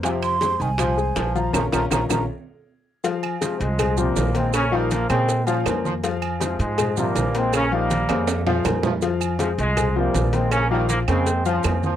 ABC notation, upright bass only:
X:1
M:4/4
L:1/8
Q:1/4=160
K:Fm
V:1 name="Upright bass" clef=bass
F,,3 C,,3 B,,,2 | B,,, B,,, B,,, B,,, z4 | z3 C,,3 B,,,2- | B,,,3 B,,3 F,,2- |
F,,3 A,,3 B,,,2- | B,,,3 F,,3 F,,2- | F,,3 C,,3 B,,,2- | B,,,3 F,,3 F,,2 |]